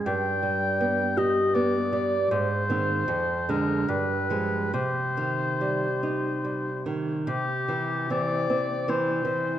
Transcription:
<<
  \new Staff \with { instrumentName = "Oboe" } { \time 3/4 \key c \minor \tempo 4 = 75 g''4. ees''8 d''4 | c''4. bes'8 b'4 | c''2~ c''8 r8 | \key c \major g'4 d''4 c''4 | }
  \new Staff \with { instrumentName = "Nylon-string guitar" } { \clef bass \time 3/4 \key c \minor g,8 g8 b8 g'8 b8 g8 | aes,8 <ees c'>8 f,8 <d aes>8 g,8 <f aes>8 | c8 ees8 g8 ees'8 g8 ees8 | \key c \major c8 e8 <e c'>8 c'8 <e c'>8 e8 | }
>>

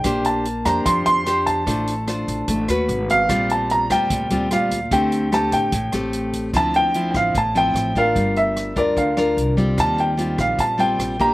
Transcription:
<<
  \new Staff \with { instrumentName = "Grand piano" } { \time 4/4 \key d \phrygian \tempo 4 = 148 g''8 a''4 bes''8 c'''8 c'''4 a''8~ | a''2~ a''8 r4 f''8~ | f''8 a''8 bes''8 g''4. f''4 | g''4 a''8 g''4 r4. |
\key d \minor a''8 g''8.~ g''32 g''32 f''8 a''8 g''4 f''8~ | f''8 e''4 d''8 f''4 r4 | a''8 g''4 f''8 a''8 g''4 bes''8 | }
  \new Staff \with { instrumentName = "Nylon-string guitar" } { \time 4/4 \key d \phrygian << { <d' g' c''>4 r8 <d' g' c''>4. <d' g' c''>4 | <d' f' c''>8 r8 <d' f' c''>4. <cis' fis' b'>4. | <g c' f'>4. <g c' f'>4 <g c' f'>8 <g c' f'>8 r8 | <a c' g'>4 <a c' g'>4 r8 <a c' g'>4. |
\key d \minor <f c' e'>4 <f c' e'>4 r8 <f c' e'>4 <d' f' bes'>8~ | <d' f' bes'>4. <d' f' bes'>4 <d' f' bes'>4 <g c' f'>8~ | <g c' f'>4 <g c' f'>4. <g c' f'>4 <bes d' g'>8 | } \\ { bes2 f2 | a2 a4 r4 | bes,2 bes,2 | d2 a,2 |
d2 a,2 | g2 d2 | ees2 bes,2 | } >> }
  \new Staff \with { instrumentName = "Upright bass" } { \clef bass \time 4/4 \key d \phrygian bes,,4. f,8 f,8 f,4. | a,,4. a,,8 a,,8 ees,8 aes,,4 | bes,,4. d,8 d,8 d,4. | d,4. a,,8 a,,8 a,,4. |
\key d \minor d,4. a,,8 a,,4 a,,4 | g,,4. d,8 d,4 c,4 | ees,4. bes,,8 bes,,4 bes,,4 | }
  \new DrumStaff \with { instrumentName = "Drums" } \drummode { \time 4/4 <hh bd ss>8 hh8 hh8 <hh bd ss>8 <hh bd>8 hh8 <hh ss>8 <hh bd>8 | <hh bd>8 hh8 <hh ss>8 <hh bd>8 <hh bd>8 <hh ss>8 hh8 <hh bd>8 | <hh bd ss>8 hh8 hh8 <hh bd ss>8 <hh bd>8 hh8 <hh ss>8 <hh bd>8 | <hh bd>8 hh8 <hh ss>8 <hh bd>8 <hh bd>8 <hh ss>8 hh8 <hh bd>8 |
<hh bd ss>8 hh8 hh8 <hh bd ss>8 <hh bd>8 hh8 <hh ss>8 <hh bd>8 | <hh bd>8 hh8 <hh ss>8 <hh bd>8 <hh bd>8 <hh ss>8 hh8 <hh bd>8 | <hh bd ss>8 hh8 hh8 <hh bd ss>8 <hh bd>8 hh8 <hh ss>8 <hh bd>8 | }
>>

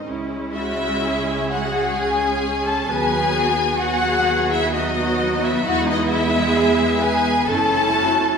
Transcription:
<<
  \new Staff \with { instrumentName = "Violin section" } { \time 3/4 \key cis \minor \tempo 4 = 65 r8 e''4 fis''8 gis''8. a''16 | gis''4 fis''8. e''16 dis''8. e''16 | fis''16 dis''16 e''4 gis''8 a''4 | }
  \new Staff \with { instrumentName = "Cello section" } { \time 3/4 \key cis \minor e'8 fis'8 gis'2 | b'8 fis'8 gis'4 fis'4 | e'4 gis'8 b'8 a'8 fis'8 | }
  \new Staff \with { instrumentName = "Violin section" } { \time 3/4 \key cis \minor r8 e'4 fis'8 gis'8. a'16 | gis'4 fis'8. e'16 dis'8. e'16 | fis'16 dis'16 e'4 gis'8 a'4 | }
  \new Staff \with { instrumentName = "Viola section" } { \time 3/4 \key cis \minor <gis cis'>2 <gis cis'>4 | <fis b>4 <fis b>4 <fis b>4 | <gis b>2 <cis' e'>4 | }
  \new Staff \with { instrumentName = "Double bass section" } { \clef bass \time 3/4 \key cis \minor cis,2. | dis,2. | e,2 fis,,4 | }
>>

